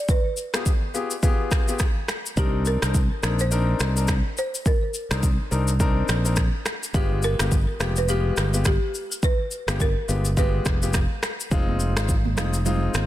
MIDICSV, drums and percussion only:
0, 0, Header, 1, 2, 480
1, 0, Start_track
1, 0, Key_signature, -3, "minor"
1, 0, Tempo, 571429
1, 72, Time_signature, 4, 2, 24, 8
1, 10973, End_track
2, 0, Start_track
2, 0, Title_t, "Drums"
2, 72, Note_on_c, 9, 36, 108
2, 72, Note_on_c, 9, 82, 62
2, 156, Note_off_c, 9, 36, 0
2, 156, Note_off_c, 9, 82, 0
2, 310, Note_on_c, 9, 82, 54
2, 394, Note_off_c, 9, 82, 0
2, 451, Note_on_c, 9, 37, 110
2, 456, Note_on_c, 9, 26, 87
2, 456, Note_on_c, 9, 82, 69
2, 535, Note_off_c, 9, 37, 0
2, 540, Note_off_c, 9, 26, 0
2, 540, Note_off_c, 9, 82, 0
2, 554, Note_on_c, 9, 36, 89
2, 555, Note_on_c, 9, 82, 82
2, 638, Note_off_c, 9, 36, 0
2, 639, Note_off_c, 9, 82, 0
2, 796, Note_on_c, 9, 82, 57
2, 880, Note_off_c, 9, 82, 0
2, 930, Note_on_c, 9, 82, 72
2, 1014, Note_off_c, 9, 82, 0
2, 1032, Note_on_c, 9, 36, 89
2, 1033, Note_on_c, 9, 82, 72
2, 1116, Note_off_c, 9, 36, 0
2, 1117, Note_off_c, 9, 82, 0
2, 1272, Note_on_c, 9, 36, 95
2, 1272, Note_on_c, 9, 82, 59
2, 1276, Note_on_c, 9, 37, 88
2, 1280, Note_on_c, 9, 26, 69
2, 1356, Note_off_c, 9, 36, 0
2, 1356, Note_off_c, 9, 82, 0
2, 1360, Note_off_c, 9, 37, 0
2, 1364, Note_off_c, 9, 26, 0
2, 1414, Note_on_c, 9, 82, 75
2, 1498, Note_off_c, 9, 82, 0
2, 1505, Note_on_c, 9, 82, 80
2, 1510, Note_on_c, 9, 37, 82
2, 1512, Note_on_c, 9, 36, 85
2, 1514, Note_on_c, 9, 26, 68
2, 1589, Note_off_c, 9, 82, 0
2, 1594, Note_off_c, 9, 37, 0
2, 1596, Note_off_c, 9, 36, 0
2, 1598, Note_off_c, 9, 26, 0
2, 1750, Note_on_c, 9, 37, 92
2, 1754, Note_on_c, 9, 82, 51
2, 1755, Note_on_c, 9, 26, 81
2, 1834, Note_off_c, 9, 37, 0
2, 1838, Note_off_c, 9, 82, 0
2, 1839, Note_off_c, 9, 26, 0
2, 1899, Note_on_c, 9, 82, 82
2, 1983, Note_off_c, 9, 82, 0
2, 1992, Note_on_c, 9, 36, 105
2, 1992, Note_on_c, 9, 82, 62
2, 2076, Note_off_c, 9, 36, 0
2, 2076, Note_off_c, 9, 82, 0
2, 2230, Note_on_c, 9, 82, 54
2, 2314, Note_off_c, 9, 82, 0
2, 2371, Note_on_c, 9, 37, 108
2, 2375, Note_on_c, 9, 26, 87
2, 2376, Note_on_c, 9, 82, 66
2, 2455, Note_off_c, 9, 37, 0
2, 2459, Note_off_c, 9, 26, 0
2, 2460, Note_off_c, 9, 82, 0
2, 2474, Note_on_c, 9, 36, 90
2, 2474, Note_on_c, 9, 82, 81
2, 2558, Note_off_c, 9, 36, 0
2, 2558, Note_off_c, 9, 82, 0
2, 2716, Note_on_c, 9, 37, 94
2, 2716, Note_on_c, 9, 82, 62
2, 2721, Note_on_c, 9, 26, 77
2, 2800, Note_off_c, 9, 37, 0
2, 2800, Note_off_c, 9, 82, 0
2, 2805, Note_off_c, 9, 26, 0
2, 2850, Note_on_c, 9, 82, 70
2, 2934, Note_off_c, 9, 82, 0
2, 2953, Note_on_c, 9, 82, 76
2, 3037, Note_off_c, 9, 82, 0
2, 3191, Note_on_c, 9, 82, 59
2, 3196, Note_on_c, 9, 37, 89
2, 3200, Note_on_c, 9, 26, 67
2, 3275, Note_off_c, 9, 82, 0
2, 3280, Note_off_c, 9, 37, 0
2, 3284, Note_off_c, 9, 26, 0
2, 3333, Note_on_c, 9, 82, 76
2, 3417, Note_off_c, 9, 82, 0
2, 3425, Note_on_c, 9, 82, 80
2, 3429, Note_on_c, 9, 37, 90
2, 3432, Note_on_c, 9, 36, 87
2, 3434, Note_on_c, 9, 26, 70
2, 3509, Note_off_c, 9, 82, 0
2, 3513, Note_off_c, 9, 37, 0
2, 3516, Note_off_c, 9, 36, 0
2, 3518, Note_off_c, 9, 26, 0
2, 3675, Note_on_c, 9, 82, 48
2, 3759, Note_off_c, 9, 82, 0
2, 3820, Note_on_c, 9, 82, 83
2, 3904, Note_off_c, 9, 82, 0
2, 3912, Note_on_c, 9, 36, 105
2, 3912, Note_on_c, 9, 82, 59
2, 3996, Note_off_c, 9, 36, 0
2, 3996, Note_off_c, 9, 82, 0
2, 4150, Note_on_c, 9, 82, 55
2, 4234, Note_off_c, 9, 82, 0
2, 4291, Note_on_c, 9, 37, 107
2, 4296, Note_on_c, 9, 26, 88
2, 4296, Note_on_c, 9, 82, 68
2, 4375, Note_off_c, 9, 37, 0
2, 4380, Note_off_c, 9, 26, 0
2, 4380, Note_off_c, 9, 82, 0
2, 4393, Note_on_c, 9, 36, 93
2, 4394, Note_on_c, 9, 82, 85
2, 4477, Note_off_c, 9, 36, 0
2, 4478, Note_off_c, 9, 82, 0
2, 4636, Note_on_c, 9, 82, 58
2, 4720, Note_off_c, 9, 82, 0
2, 4770, Note_on_c, 9, 82, 69
2, 4854, Note_off_c, 9, 82, 0
2, 4872, Note_on_c, 9, 36, 88
2, 4873, Note_on_c, 9, 82, 71
2, 4956, Note_off_c, 9, 36, 0
2, 4957, Note_off_c, 9, 82, 0
2, 5111, Note_on_c, 9, 82, 58
2, 5116, Note_on_c, 9, 37, 88
2, 5120, Note_on_c, 9, 26, 70
2, 5195, Note_off_c, 9, 82, 0
2, 5200, Note_off_c, 9, 37, 0
2, 5204, Note_off_c, 9, 26, 0
2, 5254, Note_on_c, 9, 82, 77
2, 5338, Note_off_c, 9, 82, 0
2, 5345, Note_on_c, 9, 82, 80
2, 5350, Note_on_c, 9, 37, 85
2, 5352, Note_on_c, 9, 36, 86
2, 5354, Note_on_c, 9, 26, 70
2, 5429, Note_off_c, 9, 82, 0
2, 5434, Note_off_c, 9, 37, 0
2, 5436, Note_off_c, 9, 36, 0
2, 5438, Note_off_c, 9, 26, 0
2, 5591, Note_on_c, 9, 37, 98
2, 5595, Note_on_c, 9, 26, 79
2, 5595, Note_on_c, 9, 82, 50
2, 5675, Note_off_c, 9, 37, 0
2, 5679, Note_off_c, 9, 26, 0
2, 5679, Note_off_c, 9, 82, 0
2, 5740, Note_on_c, 9, 82, 83
2, 5824, Note_off_c, 9, 82, 0
2, 5832, Note_on_c, 9, 36, 106
2, 5832, Note_on_c, 9, 82, 63
2, 5916, Note_off_c, 9, 36, 0
2, 5916, Note_off_c, 9, 82, 0
2, 6070, Note_on_c, 9, 82, 56
2, 6154, Note_off_c, 9, 82, 0
2, 6211, Note_on_c, 9, 37, 112
2, 6215, Note_on_c, 9, 26, 92
2, 6216, Note_on_c, 9, 82, 66
2, 6295, Note_off_c, 9, 37, 0
2, 6299, Note_off_c, 9, 26, 0
2, 6300, Note_off_c, 9, 82, 0
2, 6313, Note_on_c, 9, 36, 92
2, 6314, Note_on_c, 9, 82, 81
2, 6397, Note_off_c, 9, 36, 0
2, 6398, Note_off_c, 9, 82, 0
2, 6556, Note_on_c, 9, 37, 99
2, 6556, Note_on_c, 9, 82, 59
2, 6560, Note_on_c, 9, 26, 76
2, 6640, Note_off_c, 9, 37, 0
2, 6640, Note_off_c, 9, 82, 0
2, 6644, Note_off_c, 9, 26, 0
2, 6690, Note_on_c, 9, 82, 68
2, 6774, Note_off_c, 9, 82, 0
2, 6792, Note_on_c, 9, 82, 73
2, 6876, Note_off_c, 9, 82, 0
2, 7031, Note_on_c, 9, 82, 61
2, 7035, Note_on_c, 9, 37, 89
2, 7039, Note_on_c, 9, 26, 68
2, 7115, Note_off_c, 9, 82, 0
2, 7119, Note_off_c, 9, 37, 0
2, 7123, Note_off_c, 9, 26, 0
2, 7173, Note_on_c, 9, 82, 77
2, 7257, Note_off_c, 9, 82, 0
2, 7264, Note_on_c, 9, 82, 78
2, 7269, Note_on_c, 9, 37, 86
2, 7272, Note_on_c, 9, 36, 86
2, 7273, Note_on_c, 9, 26, 67
2, 7348, Note_off_c, 9, 82, 0
2, 7353, Note_off_c, 9, 37, 0
2, 7356, Note_off_c, 9, 36, 0
2, 7357, Note_off_c, 9, 26, 0
2, 7515, Note_on_c, 9, 82, 50
2, 7599, Note_off_c, 9, 82, 0
2, 7660, Note_on_c, 9, 82, 80
2, 7744, Note_off_c, 9, 82, 0
2, 7752, Note_on_c, 9, 36, 102
2, 7753, Note_on_c, 9, 82, 62
2, 7836, Note_off_c, 9, 36, 0
2, 7837, Note_off_c, 9, 82, 0
2, 7990, Note_on_c, 9, 82, 55
2, 8074, Note_off_c, 9, 82, 0
2, 8131, Note_on_c, 9, 37, 115
2, 8136, Note_on_c, 9, 26, 83
2, 8136, Note_on_c, 9, 82, 67
2, 8215, Note_off_c, 9, 37, 0
2, 8220, Note_off_c, 9, 26, 0
2, 8220, Note_off_c, 9, 82, 0
2, 8234, Note_on_c, 9, 36, 90
2, 8234, Note_on_c, 9, 82, 83
2, 8318, Note_off_c, 9, 36, 0
2, 8318, Note_off_c, 9, 82, 0
2, 8475, Note_on_c, 9, 82, 60
2, 8559, Note_off_c, 9, 82, 0
2, 8610, Note_on_c, 9, 82, 69
2, 8694, Note_off_c, 9, 82, 0
2, 8712, Note_on_c, 9, 36, 88
2, 8713, Note_on_c, 9, 82, 70
2, 8796, Note_off_c, 9, 36, 0
2, 8797, Note_off_c, 9, 82, 0
2, 8951, Note_on_c, 9, 82, 58
2, 8952, Note_on_c, 9, 36, 92
2, 8955, Note_on_c, 9, 37, 88
2, 8960, Note_on_c, 9, 26, 68
2, 9035, Note_off_c, 9, 82, 0
2, 9036, Note_off_c, 9, 36, 0
2, 9039, Note_off_c, 9, 37, 0
2, 9044, Note_off_c, 9, 26, 0
2, 9094, Note_on_c, 9, 82, 78
2, 9178, Note_off_c, 9, 82, 0
2, 9185, Note_on_c, 9, 82, 82
2, 9190, Note_on_c, 9, 37, 82
2, 9192, Note_on_c, 9, 36, 86
2, 9194, Note_on_c, 9, 26, 69
2, 9269, Note_off_c, 9, 82, 0
2, 9274, Note_off_c, 9, 37, 0
2, 9276, Note_off_c, 9, 36, 0
2, 9278, Note_off_c, 9, 26, 0
2, 9431, Note_on_c, 9, 37, 98
2, 9434, Note_on_c, 9, 82, 51
2, 9435, Note_on_c, 9, 26, 75
2, 9515, Note_off_c, 9, 37, 0
2, 9518, Note_off_c, 9, 82, 0
2, 9519, Note_off_c, 9, 26, 0
2, 9580, Note_on_c, 9, 82, 82
2, 9664, Note_off_c, 9, 82, 0
2, 9672, Note_on_c, 9, 36, 111
2, 9672, Note_on_c, 9, 82, 61
2, 9756, Note_off_c, 9, 36, 0
2, 9756, Note_off_c, 9, 82, 0
2, 9815, Note_on_c, 9, 63, 68
2, 9899, Note_off_c, 9, 63, 0
2, 9910, Note_on_c, 9, 82, 57
2, 9994, Note_off_c, 9, 82, 0
2, 10052, Note_on_c, 9, 37, 113
2, 10056, Note_on_c, 9, 26, 91
2, 10056, Note_on_c, 9, 82, 65
2, 10136, Note_off_c, 9, 37, 0
2, 10140, Note_off_c, 9, 26, 0
2, 10140, Note_off_c, 9, 82, 0
2, 10154, Note_on_c, 9, 36, 90
2, 10155, Note_on_c, 9, 82, 87
2, 10238, Note_off_c, 9, 36, 0
2, 10239, Note_off_c, 9, 82, 0
2, 10293, Note_on_c, 9, 63, 76
2, 10377, Note_off_c, 9, 63, 0
2, 10393, Note_on_c, 9, 64, 81
2, 10396, Note_on_c, 9, 82, 61
2, 10397, Note_on_c, 9, 37, 96
2, 10401, Note_on_c, 9, 26, 77
2, 10477, Note_off_c, 9, 64, 0
2, 10480, Note_off_c, 9, 82, 0
2, 10481, Note_off_c, 9, 37, 0
2, 10485, Note_off_c, 9, 26, 0
2, 10530, Note_on_c, 9, 82, 72
2, 10614, Note_off_c, 9, 82, 0
2, 10633, Note_on_c, 9, 82, 74
2, 10634, Note_on_c, 9, 64, 79
2, 10717, Note_off_c, 9, 82, 0
2, 10718, Note_off_c, 9, 64, 0
2, 10872, Note_on_c, 9, 82, 62
2, 10874, Note_on_c, 9, 63, 64
2, 10876, Note_on_c, 9, 37, 90
2, 10881, Note_on_c, 9, 26, 70
2, 10956, Note_off_c, 9, 82, 0
2, 10958, Note_off_c, 9, 63, 0
2, 10960, Note_off_c, 9, 37, 0
2, 10965, Note_off_c, 9, 26, 0
2, 10973, End_track
0, 0, End_of_file